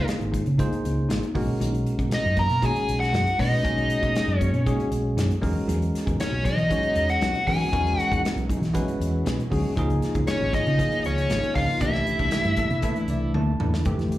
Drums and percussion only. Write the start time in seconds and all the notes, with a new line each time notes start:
0.08 snare, closed hi-hat
0.21 closed hi-hat
0.34 kick, closed hi-hat
0.46 closed hi-hat
0.59 kick, closed hi-hat
0.73 closed hi-hat
0.85 closed hi-hat
1.10 snare, closed hi-hat
1.23 closed hi-hat
1.35 kick, open hi-hat
1.61 closed hi-hat
1.74 closed hi-hat
1.86 closed hi-hat
1.99 kick, closed hi-hat
2.11 snare, closed hi-hat
2.37 kick, closed hi-hat
2.50 closed hi-hat
2.62 kick, closed hi-hat
2.76 closed hi-hat
2.89 closed hi-hat
3.02 snare, closed hi-hat
3.14 snare, closed hi-hat
3.27 closed hi-hat
3.39 kick, open hi-hat
3.65 kick, closed hi-hat
3.78 closed hi-hat
3.90 closed hi-hat
4.03 kick, closed hi-hat
4.16 snare, closed hi-hat
4.29 closed hi-hat
4.41 kick, closed hi-hat
4.54 closed hi-hat
4.67 kick, closed hi-hat
4.80 closed hi-hat
4.92 closed hi-hat
5.18 snare, closed hi-hat
5.31 closed hi-hat
5.43 kick, open hi-hat
5.69 closed hi-hat
5.82 closed hi-hat
5.95 snare, closed hi-hat
6.07 kick, closed hi-hat
6.20 snare, closed hi-hat
6.45 kick, closed hi-hat
6.58 closed hi-hat
6.71 kick, closed hi-hat
6.83 closed hi-hat
6.95 closed hi-hat
7.09 closed hi-hat
7.21 snare, closed hi-hat
7.35 closed hi-hat
7.47 kick, open hi-hat
7.73 kick, closed hi-hat
7.87 closed hi-hat
8.00 closed hi-hat
8.12 kick, closed hi-hat
8.25 snare, closed hi-hat
8.38 closed hi-hat
8.49 kick, closed hi-hat
8.63 snare, closed hi-hat
8.74 kick, closed hi-hat
8.88 closed hi-hat
9.01 closed hi-hat
9.26 snare, closed hi-hat
9.40 closed hi-hat
9.52 kick, open hi-hat
9.77 kick, closed hi-hat
9.90 closed hi-hat
10.02 snare, closed hi-hat
10.15 kick, closed hi-hat
10.27 snare, closed hi-hat
10.53 kick, closed hi-hat
10.67 closed hi-hat
10.79 kick, closed hi-hat
10.92 closed hi-hat
11.04 closed hi-hat
11.18 closed hi-hat
11.30 snare, closed hi-hat
11.43 closed hi-hat
11.55 kick, open hi-hat
11.81 kick, closed hi-hat
11.94 snare, closed hi-hat
12.07 closed hi-hat
12.19 kick, closed hi-hat
12.31 snare, closed hi-hat
12.44 closed hi-hat
12.56 kick, closed hi-hat
12.70 closed hi-hat
12.82 kick, closed hi-hat
12.96 closed hi-hat
13.08 closed hi-hat
13.34 high tom
13.60 mid tom
13.74 snare
13.85 kick, closed hi-hat
13.99 snare, closed hi-hat
14.12 closed hi-hat